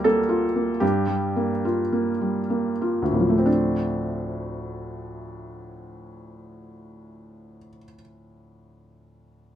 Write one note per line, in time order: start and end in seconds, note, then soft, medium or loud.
0.00 0.77 D2 medium
0.00 0.84 G3 soft
0.00 0.05 A#3 soft
0.00 0.29 F4 soft
0.00 0.84 A#4 medium
0.04 0.45 A#3 soft
0.04 0.81 A4 medium
0.29 0.71 F4 soft
0.56 0.82 A#3 soft
0.80 3.42 G2 soft
0.80 1.62 G4 medium
1.07 1.51 G3 soft
1.36 1.81 A#3 soft
1.65 2.10 F4 soft
1.93 2.40 A#3 soft
2.21 2.70 G3 soft
2.50 3.01 A#3 soft
2.82 3.33 F4 soft
3.02 7.57 D2 soft
3.11 7.67 A2 soft
3.11 3.46 A#3 soft
3.20 7.75 F3 soft
3.29 7.84 A3 soft
3.38 7.93 C4 soft
3.46 8.01 D4 soft